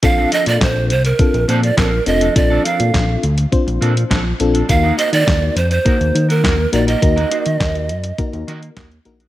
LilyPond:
<<
  \new Staff \with { instrumentName = "Pan flute" } { \time 4/4 \key bes \major \tempo 4 = 103 f''8 ees''16 d''16 c''8 c''16 bes'8. c''16 d''16 bes'8 ees''8 | d''8 f''4 r2 r8 | f''8 ees''16 d''8. c''16 c''4 bes'8. d''16 ees''16~ | ees''2. r4 | }
  \new Staff \with { instrumentName = "FM electric piano" } { \time 4/4 \key bes \major <c' d' f' a'>4. r8 <c' d' f' a'>4 r8 <c' d' f' a'>8 | <c' d' f' a'>4. r8 <c' d' f' c''>4 r8 <c' d' f' a'>8 | <bes ees' ges' bes'>4. r8 <bes ees' ges' bes'>4 r8 <bes ees' ges' bes'>8 | <bes ees' ges' bes'>4. r8 <bes ees' ges' bes'>4 r8 <bes ees' ges' bes'>8 | }
  \new Staff \with { instrumentName = "Clean electric guitar" } { \time 4/4 \key bes \major r16 <f c' d' a'>16 <f c' d' bes'>16 r4. r16 <f c' d' a'>16 r16 <f c' d' a'>16 r8 <f c' d' a'>16 | r16 <f c' d' a'>16 <f c' d' bes'>16 r4. r16 <f c' d' a'>16 r16 <f c' d' a'>16 r8 <f c' d' a'>16 | r16 <bes ees' ges' bes'>16 <bes ees' ges' c''>16 r4 r16 <bes ees' ges' bes'>16 r8 <bes ees' ges' bes'>16 <bes ees' ges' bes'>16 r8 <bes ees' ges' bes'>16 | r16 <bes ees' ges' bes'>16 <bes ees' ges' c''>16 r4. r16 <bes ees' ges' bes'>16 r16 <bes ees' ges' bes'>16 r8 <bes ees' ges' bes'>16 | }
  \new Staff \with { instrumentName = "Analog synth bass" } { \clef bass \time 4/4 \key bes \major bes,,8 r16 bes,16 bes,,8 c,8 r16 bes,,16 bes,8 bes,,8 f,,8 | bes,,8 r16 bes,16 bes,,8 d,8 r16 bes,,16 bes,8 bes,,8 bes,,8 | ees,8 r16 ees16 ees,8 f,8 r16 ees,16 ees8 ees,8 bes,,8 | ees,8 r16 ees16 ees,8 ges,8 r16 ees,16 ees8 ees,8 bes,,8 | }
  \new DrumStaff \with { instrumentName = "Drums" } \drummode { \time 4/4 <hh bd>8 hh16 hh16 <hc hh bd sn>8 hh16 hh16 <hh bd>16 hh16 hh16 hh16 <hc hh bd sn>8 hh16 hh16 | <hh bd>8 hh16 hh16 <hc hh bd sn>8 hh16 hh16 <hh bd>16 hh16 hh16 hh16 <hc hh bd sn>8 hh16 hh16 | <hh bd>8 hh16 hh16 <hc hh bd sn>8 hh16 hh16 <hh bd>16 hh16 hh16 hh16 <hc hh bd sn>8 hh16 hh16 | <hh bd>16 hh16 hh16 hh16 <hc hh bd sn>16 hh16 hh16 hh16 <hh bd>16 hh16 hh16 hh16 <hc hh bd sn>16 hh16 hh16 hh16 | }
>>